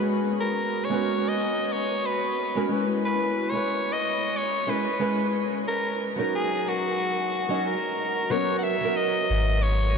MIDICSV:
0, 0, Header, 1, 4, 480
1, 0, Start_track
1, 0, Key_signature, 5, "minor"
1, 0, Tempo, 659341
1, 290, Time_signature, 4, 2, 24, 8
1, 7265, End_track
2, 0, Start_track
2, 0, Title_t, "Soprano saxophone"
2, 0, Program_c, 0, 64
2, 294, Note_on_c, 0, 70, 88
2, 615, Note_on_c, 0, 73, 87
2, 626, Note_off_c, 0, 70, 0
2, 935, Note_on_c, 0, 75, 96
2, 946, Note_off_c, 0, 73, 0
2, 1217, Note_off_c, 0, 75, 0
2, 1217, Note_on_c, 0, 75, 62
2, 1251, Note_on_c, 0, 73, 98
2, 1262, Note_off_c, 0, 75, 0
2, 1499, Note_on_c, 0, 71, 82
2, 1510, Note_off_c, 0, 73, 0
2, 1974, Note_off_c, 0, 71, 0
2, 2222, Note_on_c, 0, 71, 88
2, 2545, Note_on_c, 0, 73, 84
2, 2556, Note_off_c, 0, 71, 0
2, 2857, Note_on_c, 0, 75, 99
2, 2868, Note_off_c, 0, 73, 0
2, 3177, Note_on_c, 0, 73, 93
2, 3188, Note_off_c, 0, 75, 0
2, 3419, Note_on_c, 0, 71, 81
2, 3430, Note_off_c, 0, 73, 0
2, 3894, Note_off_c, 0, 71, 0
2, 4134, Note_on_c, 0, 70, 108
2, 4430, Note_off_c, 0, 70, 0
2, 4513, Note_on_c, 0, 70, 83
2, 4607, Note_off_c, 0, 70, 0
2, 4622, Note_on_c, 0, 68, 92
2, 4864, Note_on_c, 0, 66, 89
2, 4875, Note_off_c, 0, 68, 0
2, 5577, Note_off_c, 0, 66, 0
2, 5583, Note_on_c, 0, 70, 84
2, 6051, Note_on_c, 0, 73, 95
2, 6062, Note_off_c, 0, 70, 0
2, 6245, Note_off_c, 0, 73, 0
2, 6251, Note_on_c, 0, 78, 69
2, 6285, Note_on_c, 0, 76, 90
2, 6296, Note_off_c, 0, 78, 0
2, 6526, Note_on_c, 0, 75, 96
2, 6537, Note_off_c, 0, 76, 0
2, 7007, Note_on_c, 0, 73, 101
2, 7018, Note_off_c, 0, 75, 0
2, 7265, Note_off_c, 0, 73, 0
2, 7265, End_track
3, 0, Start_track
3, 0, Title_t, "Nylon-string guitar"
3, 0, Program_c, 1, 24
3, 0, Note_on_c, 1, 56, 87
3, 0, Note_on_c, 1, 59, 81
3, 0, Note_on_c, 1, 61, 83
3, 0, Note_on_c, 1, 66, 78
3, 0, Note_on_c, 1, 68, 92
3, 626, Note_off_c, 1, 56, 0
3, 629, Note_off_c, 1, 59, 0
3, 632, Note_off_c, 1, 61, 0
3, 636, Note_off_c, 1, 66, 0
3, 640, Note_off_c, 1, 68, 0
3, 651, Note_on_c, 1, 56, 85
3, 656, Note_on_c, 1, 59, 77
3, 665, Note_on_c, 1, 61, 76
3, 675, Note_on_c, 1, 66, 76
3, 681, Note_on_c, 1, 71, 93
3, 1826, Note_off_c, 1, 56, 0
3, 1828, Note_off_c, 1, 59, 0
3, 1833, Note_off_c, 1, 61, 0
3, 1838, Note_off_c, 1, 66, 0
3, 1840, Note_off_c, 1, 71, 0
3, 1858, Note_on_c, 1, 56, 78
3, 1861, Note_on_c, 1, 59, 79
3, 1867, Note_on_c, 1, 61, 80
3, 1869, Note_on_c, 1, 66, 75
3, 1872, Note_on_c, 1, 70, 88
3, 1942, Note_off_c, 1, 56, 0
3, 1942, Note_off_c, 1, 59, 0
3, 1946, Note_off_c, 1, 61, 0
3, 1946, Note_off_c, 1, 66, 0
3, 1949, Note_off_c, 1, 70, 0
3, 1957, Note_on_c, 1, 56, 79
3, 1965, Note_on_c, 1, 61, 72
3, 1975, Note_on_c, 1, 64, 73
3, 1986, Note_on_c, 1, 71, 84
3, 2545, Note_off_c, 1, 56, 0
3, 2550, Note_off_c, 1, 61, 0
3, 2555, Note_off_c, 1, 64, 0
3, 2560, Note_off_c, 1, 71, 0
3, 2560, Note_on_c, 1, 56, 63
3, 2571, Note_on_c, 1, 61, 59
3, 2585, Note_on_c, 1, 64, 58
3, 2595, Note_on_c, 1, 71, 70
3, 3373, Note_off_c, 1, 56, 0
3, 3378, Note_off_c, 1, 61, 0
3, 3385, Note_off_c, 1, 64, 0
3, 3390, Note_off_c, 1, 71, 0
3, 3399, Note_on_c, 1, 56, 72
3, 3402, Note_on_c, 1, 61, 65
3, 3405, Note_on_c, 1, 64, 65
3, 3411, Note_on_c, 1, 70, 75
3, 3535, Note_off_c, 1, 56, 0
3, 3536, Note_off_c, 1, 61, 0
3, 3538, Note_off_c, 1, 64, 0
3, 3541, Note_off_c, 1, 70, 0
3, 3636, Note_on_c, 1, 56, 95
3, 3640, Note_on_c, 1, 61, 82
3, 3645, Note_on_c, 1, 64, 82
3, 3651, Note_on_c, 1, 71, 98
3, 4110, Note_off_c, 1, 56, 0
3, 4112, Note_off_c, 1, 61, 0
3, 4115, Note_off_c, 1, 64, 0
3, 4118, Note_off_c, 1, 71, 0
3, 4482, Note_on_c, 1, 54, 84
3, 4491, Note_on_c, 1, 61, 82
3, 4504, Note_on_c, 1, 63, 73
3, 4510, Note_on_c, 1, 70, 97
3, 5426, Note_off_c, 1, 54, 0
3, 5431, Note_off_c, 1, 61, 0
3, 5437, Note_off_c, 1, 63, 0
3, 5440, Note_off_c, 1, 70, 0
3, 5451, Note_on_c, 1, 54, 77
3, 5455, Note_on_c, 1, 61, 71
3, 5459, Note_on_c, 1, 63, 69
3, 5465, Note_on_c, 1, 75, 84
3, 5638, Note_off_c, 1, 54, 0
3, 5639, Note_off_c, 1, 61, 0
3, 5642, Note_off_c, 1, 63, 0
3, 5645, Note_off_c, 1, 75, 0
3, 6042, Note_on_c, 1, 54, 97
3, 6048, Note_on_c, 1, 59, 87
3, 6053, Note_on_c, 1, 61, 90
3, 6056, Note_on_c, 1, 70, 100
3, 6366, Note_off_c, 1, 54, 0
3, 6369, Note_off_c, 1, 59, 0
3, 6372, Note_off_c, 1, 61, 0
3, 6374, Note_off_c, 1, 70, 0
3, 6411, Note_on_c, 1, 54, 71
3, 6421, Note_on_c, 1, 59, 67
3, 6429, Note_on_c, 1, 61, 66
3, 6442, Note_on_c, 1, 70, 79
3, 7218, Note_off_c, 1, 54, 0
3, 7223, Note_off_c, 1, 59, 0
3, 7227, Note_off_c, 1, 61, 0
3, 7234, Note_off_c, 1, 70, 0
3, 7265, End_track
4, 0, Start_track
4, 0, Title_t, "Sub bass"
4, 0, Program_c, 2, 38
4, 6770, Note_on_c, 2, 32, 98
4, 7265, Note_off_c, 2, 32, 0
4, 7265, End_track
0, 0, End_of_file